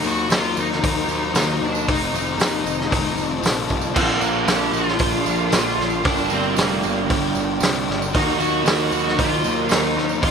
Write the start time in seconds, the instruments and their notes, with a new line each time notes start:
Already playing: overdriven electric guitar D#3 F#3 A#3 D#4, analog synth pad F#4 C5 D#5 A#5
0.04 picked electric bass D#2, lead electric guitar F#4, tambourine
0.17 tambourine
0.29 picked electric bass D#2, overdriven electric guitar D#3 F#3 A#3, snare, open hi-hat, tambourine
0.33 overdriven electric guitar D#4, lead electric guitar F4
0.43 tambourine
0.57 picked electric bass D#2, lead electric guitar D#4, tambourine
0.72 snare
0.82 picked electric bass D#2, overdriven electric guitar D#3 F#3 A#3 D#4, kick, open hi-hat, tambourine
1.08 picked electric bass D#2, tambourine
1.33 picked electric bass D#2, overdriven electric guitar D#3 F#3 A#3 D#4, snare, open hi-hat, tambourine
1.61 picked electric bass D#2, lead electric guitar D4, tambourine
1.75 tambourine
1.87 picked electric bass F1, overdriven electric guitar F2 C3 D#3 A3 D#4, lead electric guitar D#4, analog synth pad F4 C5 A5, kick, open hi-hat
2.02 tambourine
2.13 picked electric bass F1, tambourine
2.28 tambourine
2.38 picked electric bass D#2, overdriven electric guitar C3 D#3 A3 D#4, snare, open hi-hat, tambourine
2.64 picked electric bass F1, tambourine
2.81 snare
2.90 picked electric bass F1, overdriven electric guitar F2 C3 D#3 A3 D#4, kick, open hi-hat, tambourine
3.06 tambourine
3.18 picked electric bass F1, tambourine
3.31 tambourine
3.41 picked electric bass A#1, overdriven electric guitar C3 D#3 A3 D#4, tambourine
3.45 snare, open hi-hat
3.69 picked electric bass C2, kick, tambourine
3.81 tambourine
3.93 picked electric bass A#1, overdriven electric guitar A#2 D3 F3 A#3 D4, lead electric guitar C4, analog synth pad A#4 D5, kick, tambourine, crash
3.97 overdriven electric guitar F4
4.08 tambourine
4.20 picked electric bass A#1, lead electric guitar A#3, tambourine
4.36 tambourine
4.44 picked electric bass A#1, overdriven electric guitar A#2 F3 A#3 D4, lead electric guitar G4, snare, open hi-hat, tambourine
4.62 tambourine
4.72 picked electric bass A#1, lead electric guitar F4, tambourine
4.88 snare
4.97 picked electric bass A#1, overdriven electric guitar A#2 F3 A#3 D4, kick, open hi-hat, tambourine
5.25 picked electric bass A#1, tambourine
5.49 picked electric bass A#1, overdriven electric guitar A#2 F3 A#3 D4, open hi-hat, tambourine
5.53 snare
5.77 picked electric bass A#1, snare, tambourine
5.90 tambourine
6.02 picked electric bass G1, overdriven electric guitar G2 D3 G3 A#3 D4, lead electric guitar D4, analog synth pad G5, kick, open hi-hat, tambourine
6.07 overdriven electric guitar G4
6.17 tambourine
6.30 picked electric bass G1, lead electric guitar C4, tambourine
6.43 tambourine
6.56 picked electric bass F1, overdriven electric guitar D3 G3 A#3 D4, lead electric guitar A#3, snare, open hi-hat, tambourine
6.70 tambourine
6.83 picked electric bass G1, tambourine
7.08 picked electric bass G1, overdriven electric guitar G2 D3 G3 A#3 D4, kick, open hi-hat, tambourine
7.35 picked electric bass G1, tambourine
7.60 picked electric bass C2, overdriven electric guitar D3 G3 A#3 D4, snare, open hi-hat, tambourine
7.75 tambourine
7.88 picked electric bass G1, snare, tambourine
8.02 tambourine
8.13 picked electric bass D#2, overdriven electric guitar D#3 F#3 A#3 D#4 F#4, lead electric guitar D#4, analog synth pad D#4 C5 D#5, kick, open hi-hat, tambourine
8.29 tambourine
8.39 picked electric bass D#2, lead electric guitar F#4, tambourine
8.65 picked electric bass D#2, overdriven electric guitar D#3 F#3 A#3 D#4, snare, open hi-hat, tambourine
8.79 tambourine
8.92 picked electric bass D#2, tambourine
9.08 snare
9.17 picked electric bass D#2, overdriven electric guitar D#3 F#3 A#3 D#4, lead electric guitar F4, kick, open hi-hat, tambourine
9.44 picked electric bass D#2, tambourine
9.69 picked electric bass D#2, overdriven electric guitar D#3 F#3 A#3 D#4, lead electric guitar D#4, snare, open hi-hat, tambourine
9.83 tambourine
9.96 picked electric bass D#2, snare, tambourine
10.09 tambourine
10.20 picked electric bass F1, overdriven electric guitar F2 C3 D#3 A3 C4 D#4 F4, lead electric guitar F4, analog synth pad A4 F5, kick, open hi-hat, tambourine